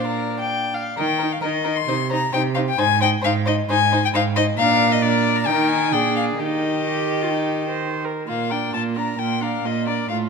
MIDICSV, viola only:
0, 0, Header, 1, 2, 480
1, 0, Start_track
1, 0, Key_signature, -3, "major"
1, 0, Tempo, 451128
1, 1043, Time_signature, 4, 2, 24, 8
1, 5824, Tempo, 466563
1, 8704, Tempo, 453172
1, 10842, End_track
2, 0, Start_track
2, 0, Title_t, "Viola"
2, 0, Program_c, 0, 41
2, 0, Note_on_c, 0, 62, 50
2, 805, Note_off_c, 0, 62, 0
2, 1048, Note_on_c, 0, 63, 45
2, 1133, Note_off_c, 0, 63, 0
2, 1300, Note_on_c, 0, 63, 47
2, 1385, Note_off_c, 0, 63, 0
2, 1536, Note_on_c, 0, 63, 44
2, 1621, Note_off_c, 0, 63, 0
2, 1761, Note_on_c, 0, 63, 47
2, 1846, Note_off_c, 0, 63, 0
2, 2007, Note_on_c, 0, 63, 51
2, 2092, Note_off_c, 0, 63, 0
2, 2254, Note_on_c, 0, 63, 43
2, 2340, Note_off_c, 0, 63, 0
2, 2496, Note_on_c, 0, 63, 51
2, 2581, Note_off_c, 0, 63, 0
2, 2730, Note_on_c, 0, 63, 50
2, 2815, Note_off_c, 0, 63, 0
2, 2962, Note_on_c, 0, 63, 57
2, 3047, Note_off_c, 0, 63, 0
2, 3215, Note_on_c, 0, 63, 59
2, 3300, Note_off_c, 0, 63, 0
2, 3452, Note_on_c, 0, 63, 55
2, 3537, Note_off_c, 0, 63, 0
2, 3693, Note_on_c, 0, 63, 56
2, 3778, Note_off_c, 0, 63, 0
2, 3933, Note_on_c, 0, 63, 62
2, 4018, Note_off_c, 0, 63, 0
2, 4172, Note_on_c, 0, 63, 56
2, 4257, Note_off_c, 0, 63, 0
2, 4399, Note_on_c, 0, 63, 64
2, 4484, Note_off_c, 0, 63, 0
2, 4642, Note_on_c, 0, 63, 59
2, 4727, Note_off_c, 0, 63, 0
2, 4874, Note_on_c, 0, 62, 68
2, 5316, Note_off_c, 0, 62, 0
2, 5346, Note_on_c, 0, 62, 66
2, 5832, Note_on_c, 0, 63, 62
2, 5847, Note_off_c, 0, 62, 0
2, 6295, Note_on_c, 0, 62, 54
2, 6311, Note_off_c, 0, 63, 0
2, 6773, Note_off_c, 0, 62, 0
2, 6780, Note_on_c, 0, 63, 48
2, 7204, Note_off_c, 0, 63, 0
2, 7248, Note_on_c, 0, 67, 54
2, 7622, Note_on_c, 0, 65, 47
2, 7637, Note_off_c, 0, 67, 0
2, 7727, Note_off_c, 0, 65, 0
2, 7733, Note_on_c, 0, 63, 50
2, 8094, Note_off_c, 0, 63, 0
2, 8098, Note_on_c, 0, 72, 57
2, 8471, Note_on_c, 0, 70, 46
2, 8487, Note_off_c, 0, 72, 0
2, 8708, Note_off_c, 0, 70, 0
2, 8714, Note_on_c, 0, 58, 35
2, 8959, Note_on_c, 0, 62, 33
2, 8975, Note_off_c, 0, 58, 0
2, 9201, Note_on_c, 0, 58, 34
2, 9217, Note_off_c, 0, 62, 0
2, 9435, Note_on_c, 0, 62, 32
2, 9450, Note_off_c, 0, 58, 0
2, 9667, Note_off_c, 0, 62, 0
2, 9673, Note_on_c, 0, 58, 36
2, 9907, Note_on_c, 0, 62, 32
2, 9922, Note_off_c, 0, 58, 0
2, 10158, Note_on_c, 0, 58, 34
2, 10174, Note_off_c, 0, 62, 0
2, 10398, Note_on_c, 0, 62, 35
2, 10414, Note_off_c, 0, 58, 0
2, 10633, Note_off_c, 0, 62, 0
2, 10646, Note_on_c, 0, 57, 34
2, 10842, Note_off_c, 0, 57, 0
2, 10842, End_track
0, 0, End_of_file